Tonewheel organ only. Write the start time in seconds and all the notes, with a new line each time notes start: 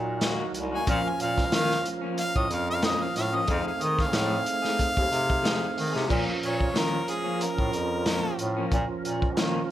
Already playing: F#3 D#4 F#4 A#4
0.86 F3 C#4 F4 A#4
3.47 A3 C4 D#4 G#4
6.08 F3 C#4 F4 A#4